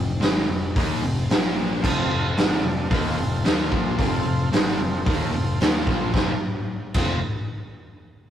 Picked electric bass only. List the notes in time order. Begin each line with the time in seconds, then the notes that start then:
Already playing: F1
0.22 G#1
0.48 F1
0.76 D#2
1.02 F1
1.29 A#1
1.84 F1
2.10 F1
2.36 G#1
2.63 F1
2.91 D#2
3.17 F1
3.44 D#2
3.72 A#1
3.99 F1
4.25 F1
4.52 G#1
4.79 F1
5.06 D#2
5.33 F1
5.61 D#2
5.87 A#1
6.14 F1
6.95 F1